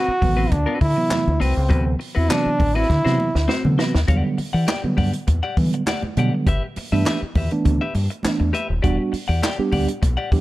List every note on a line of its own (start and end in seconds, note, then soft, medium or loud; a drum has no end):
0.00 0.11 C4 medium
0.00 0.11 F#4 medium
0.00 0.53 F#4 loud
0.00 0.11 B4 medium
0.08 muted fingered electric bass stroke soft
0.21 0.46 A1 medium
0.21 0.53 C3 medium
0.21 0.53 E3 medium
0.21 0.53 F#3 medium
0.21 0.53 B3 medium
0.21 muted clean electric guitar stroke soft
0.21 kick medium
0.21 open hi-hat medium
0.21 muted conga medium
0.21 low conga medium
0.37 0.50 C4 medium
0.37 0.50 F#4 medium
0.37 0.50 B4 medium
0.51 0.65 D2 medium
0.51 0.81 D4 medium
0.51 muted clean electric guitar stroke soft
0.51 kick loud
0.51 closed hi-hat medium
0.51 muted conga medium
0.66 0.79 C4 medium
0.66 0.79 F#4 medium
0.66 0.80 B4 medium
0.80 0.94 D3 loud
0.80 1.43 E4 loud
0.80 muted clean electric guitar stroke soft
0.80 kick loud
0.80 open hi-hat medium
0.80 muted conga medium
0.97 1.27 C3 medium
0.97 1.28 E3 medium
0.97 1.27 F#3 medium
0.97 1.28 B3 medium
0.97 muted clean electric guitar stroke soft
1.10 muted clean electric guitar stroke soft
1.10 snare loud
1.10 clap medium
1.10 closed hi-hat medium
1.10 high conga medium
1.27 1.38 D2 medium
1.27 high conga medium
1.40 1.54 C2 loud
1.40 1.56 C4 medium
1.40 1.89 C4 medium
1.40 1.55 F#4 medium
1.40 1.54 B4 medium
1.40 open hi-hat medium
1.56 1.71 C#2 medium
1.56 muted clean electric guitar stroke soft
1.69 1.94 D2 loud
1.69 1.95 C3 medium
1.69 1.95 E3 medium
1.69 1.96 F#3 medium
1.69 1.95 B3 medium
1.69 1.89 C4 medium
1.69 1.85 F#4 medium
1.69 1.84 B4 loud
1.69 kick loud
1.69 closed hi-hat medium
1.85 muted clean electric guitar stroke soft
1.99 muted clean electric guitar stroke soft
1.99 open hi-hat medium
2.15 2.28 E2 medium
2.15 2.27 C4 medium
2.15 2.31 E4 loud
2.15 2.29 F#4 medium
2.15 2.29 B4 medium
2.29 2.60 C3 medium
2.29 2.60 E3 medium
2.29 2.61 F#3 medium
2.29 2.61 B3 medium
2.29 2.48 C4 medium
2.29 2.76 D4 loud
2.29 2.49 F#4 medium
2.29 2.49 B4 medium
2.29 snare loud
2.29 clap loud
2.29 closed hi-hat medium
2.29 high conga medium
2.46 muted fingered electric bass stroke soft
2.58 2.84 A1 medium
2.58 muted clean electric guitar stroke soft
2.58 kick medium
2.58 open hi-hat medium
2.58 muted conga medium
2.58 low conga medium
2.75 2.87 C4 medium
2.75 3.64 E4 loud
2.75 2.88 F#4 medium
2.75 2.88 B4 medium
2.90 3.02 D3 medium
2.90 kick loud
2.90 snare medium
2.90 muted conga medium
2.90 low conga medium
3.05 3.17 C3 medium
3.05 3.29 C3 medium
3.05 3.29 E3 medium
3.05 3.29 F#3 medium
3.05 3.29 B3 medium
3.05 3.18 C4 medium
3.05 3.18 F#4 medium
3.05 3.20 C5 medium
3.05 snare medium
3.19 muted clean electric guitar stroke soft
3.19 muted conga medium
3.35 3.46 D2 loud
3.35 muted clean electric guitar stroke soft
3.35 snare medium
3.48 3.67 C4 medium
3.48 3.63 F#4 medium
3.48 3.63 C5 loud
3.48 snare medium
3.48 high conga medium
3.64 3.95 C3 medium
3.64 3.76 D3 loud
3.64 3.95 E3 medium
3.64 3.95 F#3 medium
3.64 3.95 B3 loud
3.64 muted clean electric guitar stroke medium
3.64 high conga medium
3.78 3.93 C4 medium
3.78 3.94 F#4 medium
3.78 3.93 B4 medium
3.78 snare loud
3.95 4.06 D#2 medium
3.95 muted clean electric guitar stroke soft
3.95 snare medium
4.08 4.21 E2 loud
4.08 4.39 D3 loud
4.08 4.39 F#3 medium
4.08 4.39 G3 medium
4.08 4.39 B3 medium
4.08 4.29 G4 medium
4.08 4.24 D5 medium
4.08 4.23 F#5 medium
4.08 kick loud
4.08 closed hi-hat loud
4.24 muted clean electric guitar stroke soft
4.38 muted clean electric guitar stroke soft
4.38 muted fingered electric bass stroke soft
4.38 open hi-hat medium
4.38 muted conga soft
4.53 4.65 E3 medium
4.53 4.66 G4 medium
4.53 4.67 D5 medium
4.53 4.67 F#5 medium
4.67 4.86 G4 medium
4.67 4.83 D5 medium
4.67 4.83 G5 medium
4.67 snare loud
4.67 clap medium
4.67 closed hi-hat medium
4.67 high conga medium
4.84 5.14 D3 medium
4.84 5.14 F#3 medium
4.84 5.14 G3 medium
4.84 5.14 B3 loud
4.84 muted clean electric guitar stroke soft
4.84 muted fingered electric bass stroke soft
4.97 5.10 G2 medium
4.97 5.12 G4 medium
4.97 5.13 D5 medium
4.97 5.12 F#5 medium
4.97 kick medium
4.97 open hi-hat medium
4.97 muted conga medium
5.13 muted clean electric guitar stroke soft
5.13 closed hi-hat medium
5.27 5.40 E2 medium
5.27 muted clean electric guitar stroke soft
5.27 kick loud
5.27 closed hi-hat medium
5.27 muted conga medium
5.43 5.56 G4 medium
5.43 5.57 D5 medium
5.43 5.58 F#5 medium
5.57 5.82 D3 medium
5.57 5.70 E3 medium
5.57 5.82 F#3 medium
5.57 5.82 G3 medium
5.57 5.82 B3 loud
5.57 muted clean electric guitar stroke soft
5.57 kick loud
5.57 open hi-hat medium
5.57 muted conga medium
5.73 muted clean electric guitar stroke soft
5.73 closed hi-hat soft
5.86 6.06 G4 medium
5.86 6.03 D5 medium
5.86 6.02 F#5 medium
5.86 snare loud
5.86 clap medium
5.86 closed hi-hat medium
5.86 high conga medium
6.03 muted fingered electric bass stroke medium
6.03 muted clean electric guitar stroke soft
6.03 high conga medium
6.17 6.29 B2 medium
6.17 6.47 D3 loud
6.17 6.47 F#3 medium
6.17 6.47 G3 medium
6.17 6.47 B3 medium
6.17 6.32 G4 medium
6.17 6.33 D5 medium
6.17 6.33 F#5 medium
6.17 closed hi-hat medium
6.17 high conga medium
6.34 muted clean electric guitar stroke soft
6.47 6.59 G1 loud
6.47 6.66 G4 medium
6.47 6.63 B4 loud
6.47 6.63 E5 loud
6.47 kick loud
6.47 closed hi-hat loud
6.64 muted clean electric guitar stroke soft
6.76 muted fingered electric bass stroke soft
6.76 muted clean electric guitar stroke soft
6.76 open hi-hat medium
6.76 muted conga soft
6.92 7.03 G2 medium
6.92 7.16 E3 medium
6.92 7.16 A3 medium
6.92 7.16 B3 medium
6.92 7.16 D4 loud
6.92 7.05 G4 medium
6.92 7.06 B4 medium
6.92 7.05 E5 medium
7.05 7.25 G4 medium
7.05 7.22 B4 loud
7.05 7.21 E5 medium
7.05 snare loud
7.05 clap medium
7.05 closed hi-hat medium
7.05 high conga medium
7.22 muted clean electric guitar stroke medium
7.22 muted fingered electric bass stroke soft
7.35 7.48 E2 medium
7.35 7.51 G4 medium
7.35 7.51 B4 medium
7.35 7.50 E5 medium
7.35 kick medium
7.35 open hi-hat medium
7.35 muted conga medium
7.35 low conga medium
7.51 7.81 E3 medium
7.51 7.82 A3 medium
7.51 7.82 B3 medium
7.51 7.82 D4 loud
7.51 muted clean electric guitar stroke medium
7.51 closed hi-hat medium
7.65 7.78 D2 medium
7.65 muted clean electric guitar stroke soft
7.65 kick medium
7.65 closed hi-hat medium
7.65 muted conga medium
7.65 low conga medium
7.81 7.93 G4 medium
7.81 7.94 B4 medium
7.81 7.94 E5 medium
7.95 8.07 G2 medium
7.95 open hi-hat medium
7.95 muted conga medium
8.10 muted clean electric guitar stroke medium
8.10 closed hi-hat soft
8.23 8.49 E3 medium
8.23 8.49 A3 medium
8.23 8.49 B3 medium
8.23 8.49 D4 loud
8.23 muted fingered electric bass stroke soft
8.23 snare loud
8.23 clap medium
8.23 closed hi-hat medium
8.23 high conga medium
8.40 8.51 E2 medium
8.40 muted clean electric guitar stroke soft
8.40 high conga medium
8.53 8.73 G4 medium
8.53 8.68 B4 medium
8.53 8.68 E5 loud
8.53 closed hi-hat medium
8.53 high conga medium
8.69 8.81 D#1 medium
8.69 muted clean electric guitar stroke soft
8.82 8.97 E1 loud
8.82 9.14 G3 medium
8.82 9.14 B3 medium
8.82 9.14 D4 medium
8.82 9.14 F#4 loud
8.82 9.02 G4 medium
8.82 8.97 D5 medium
8.82 8.96 F#5 medium
8.82 kick loud
8.82 closed hi-hat medium
8.98 muted clean electric guitar stroke soft
9.12 muted clean electric guitar stroke soft
9.12 muted fingered electric bass stroke soft
9.12 open hi-hat medium
9.28 9.40 E2 medium
9.28 9.41 G4 medium
9.28 9.42 D5 medium
9.28 9.42 F#5 medium
9.42 9.62 G4 medium
9.42 9.58 D5 medium
9.42 9.57 G5 loud
9.42 snare loud
9.42 clap medium
9.42 closed hi-hat medium
9.42 high conga medium
9.58 9.89 G3 medium
9.58 9.89 B3 medium
9.58 9.89 D4 medium
9.58 9.89 G4 loud
9.58 muted clean electric guitar stroke soft
9.58 muted fingered electric bass stroke soft
9.72 9.86 D2 medium
9.72 9.87 G4 medium
9.72 9.88 D5 medium
9.72 9.87 F#5 medium
9.72 kick medium
9.72 open hi-hat medium
9.72 muted conga medium
9.88 muted clean electric guitar stroke soft
9.88 closed hi-hat medium
10.02 10.15 B1 medium
10.02 muted clean electric guitar stroke soft
10.02 kick loud
10.02 closed hi-hat loud
10.02 muted conga medium
10.17 10.30 G4 medium
10.17 10.31 D5 medium
10.17 10.31 F#5 medium
10.32 10.41 E2 loud
10.32 10.41 G3 medium
10.32 10.41 B3 medium
10.32 10.41 D4 medium
10.32 10.41 G4 loud
10.32 kick medium
10.32 open hi-hat medium
10.32 muted conga medium